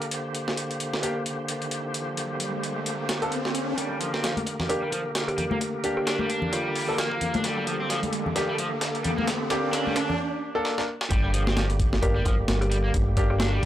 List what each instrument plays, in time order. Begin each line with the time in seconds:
Already playing: tonewheel organ D3 A#3 G4
0.02 closed hi-hat
0.11 tonewheel organ C5, closed hi-hat, riser
0.35 closed hi-hat
0.48 snare
0.57 closed hi-hat
0.71 closed hi-hat
0.80 closed hi-hat
0.94 snare
1.02 grand piano A#3 D4 G4, closed hi-hat
1.26 closed hi-hat
1.48 closed hi-hat
1.62 closed hi-hat
1.71 closed hi-hat
1.94 closed hi-hat
2.17 closed hi-hat
2.40 closed hi-hat
2.63 closed hi-hat
2.86 closed hi-hat
3.09 snare, closed hi-hat
3.22 grand piano A#3 D4 A4, closed hi-hat
3.32 closed hi-hat
3.45 snare
3.55 closed hi-hat
3.77 tonewheel organ D3 A#3 G4 A#4, overdriven electric guitar G3, kick, closed hi-hat, riser
3.90 overdriven electric guitar G3
4.00 overdriven electric guitar F3, closed hi-hat
4.13 overdriven electric guitar C4, snare
4.23 overdriven electric guitar F3, snare, closed hi-hat
4.37 closed hi-hat, high conga
4.47 kick, closed hi-hat
4.60 snare, low conga
4.69 grand piano A#3 D4 G4, kalimba A#4, kick, closed hi-hat
4.82 overdriven electric guitar G3
4.92 overdriven electric guitar F3, kick, closed hi-hat
5.15 snare, closed hi-hat
5.28 kalimba G4, closed hi-hat
5.38 overdriven electric guitar G3, closed hi-hat, low conga
5.51 overdriven electric guitar A#3, high conga
5.61 kick, closed hi-hat
5.84 grand piano A#3 D4 G4, kick, closed hi-hat
5.97 kalimba G4
6.07 overdriven electric guitar D4, kalimba G4, snare, closed hi-hat
6.19 overdriven electric guitar G3, high conga
6.30 overdriven electric guitar D4, kick, closed hi-hat
6.42 low conga
6.52 overdriven electric guitar G3, kalimba F4, closed hi-hat
6.75 open hi-hat
6.88 grand piano A#3 D4 A4
6.98 overdriven electric guitar A#3, snare, closed hi-hat
7.11 overdriven electric guitar A#3, kick
7.21 closed hi-hat, low conga
7.34 overdriven electric guitar D4, closed hi-hat, high conga
7.44 overdriven electric guitar G3, tonewheel organ A4, snare, closed hi-hat
7.57 overdriven electric guitar G3
7.67 overdriven electric guitar F3, closed hi-hat
7.80 overdriven electric guitar C4
7.90 overdriven electric guitar F3, snare, closed hi-hat
8.03 closed hi-hat, high conga
8.13 closed hi-hat
8.26 low conga
8.36 grand piano A#3 D4 G4, snare, closed hi-hat
8.49 overdriven electric guitar G3
8.58 overdriven electric guitar F3, closed hi-hat
8.81 snare, closed hi-hat
8.95 closed hi-hat
9.04 overdriven electric guitar G3, closed hi-hat, low conga
9.17 overdriven electric guitar A#3, high conga
9.27 snare, closed hi-hat
9.50 grand piano A#3 D4 G4, snare, closed hi-hat
9.73 overdriven electric guitar D4, snare, closed hi-hat
9.86 overdriven electric guitar G3, high conga
9.96 overdriven electric guitar D4, snare, closed hi-hat
10.10 low conga
10.55 grand piano A#3 D4 A4
10.65 snare
10.78 grand piano A#3 D4 A#4, snare
11.01 snare
11.10 picked electric bass G1, tonewheel organ D3 G3 A#3 G4, overdriven electric guitar G3, kick, closed hi-hat
11.23 overdriven electric guitar G3
11.33 overdriven electric guitar F3, closed hi-hat
11.47 overdriven electric guitar C4, snare
11.56 overdriven electric guitar F3, snare, closed hi-hat
11.70 closed hi-hat
11.80 kick, closed hi-hat
11.93 snare
12.02 picked electric bass G1, grand piano A#3 D4 G4, kalimba A#4, kick, closed hi-hat
12.16 overdriven electric guitar G3
12.25 picked electric bass G1, overdriven electric guitar F3, kick, closed hi-hat
12.48 picked electric bass G1, snare, closed hi-hat
12.61 kalimba G4, closed hi-hat
12.71 overdriven electric guitar G3, closed hi-hat
12.84 overdriven electric guitar A#3
12.94 picked electric bass G1, kick, closed hi-hat
13.17 grand piano A#3 D4 G4, kick, closed hi-hat
13.30 kalimba G4
13.40 overdriven electric guitar D4, kalimba G4, snare, closed hi-hat
13.53 overdriven electric guitar G3